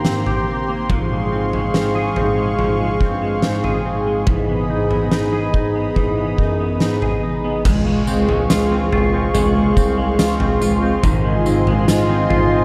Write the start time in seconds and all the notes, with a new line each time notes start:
Already playing: D#3 A#3 G4 G5 A#5 C6
0.05 G#2 C4, snare
0.26 G4, floor tom
0.47 C4
0.68 A#3
0.89 G#2 F3 G#4 F5 C#6, kick, floor tom
1.11 G#3
1.31 G#2 C4
1.53 G#3, floor tom
1.74 G#2 C4, snare
1.95 G#4
2.16 G#2 C4, floor tom
2.38 G#3
2.59 G#2 F3, floor tom
2.80 G#3
3.00 G2 C4, kick
3.22 G#3
3.42 G#2 C4, snare
3.64 G#4, floor tom
3.85 G#2 C4
4.06 G#3
4.27 G#2 E3 D#5 B5 D#6, kick, floor tom
4.49 B3
4.70 G#2 D#4
4.90 B3, floor tom
5.12 G#2 D#4, snare
5.33 G#4
5.54 G#2 D#4, kick
5.75 B3
5.96 G#2 E3, kick, floor tom
6.17 B3
6.38 F#2 D#4, kick
6.60 B3
6.80 G#2 D#4, snare
7.02 G#4, floor tom
7.23 D#4
7.44 B3
7.65 C#2 G#3 G#4 F5 C6 C#6, kick, floor tom, crash, tambourine
7.86 G#3
8.07 C#2 C4, tambourine
8.29 G#3, floor tom
8.50 C#2 F4, snare, tambourine
8.71 C4
8.92 C#2 F4, floor tom
9.13 C4
9.34 C#2 G#3, floor tom, tambourine
9.55 G#3
9.76 C2 C4, kick, tambourine
9.97 G#3
10.18 C#2 F4, snare, tambourine
10.40 C4, floor tom
10.61 C#2 F4, tambourine
10.82 C4
11.03 G#2 D#3 F4 D#5 G#5, kick, floor tom, tambourine
11.24 G#3
11.46 G#2 C4, tambourine
11.67 G#3, floor tom
11.87 G#2 F4, snare, tambourine
12.09 C4
12.30 G#2 F4, floor tom
12.51 C4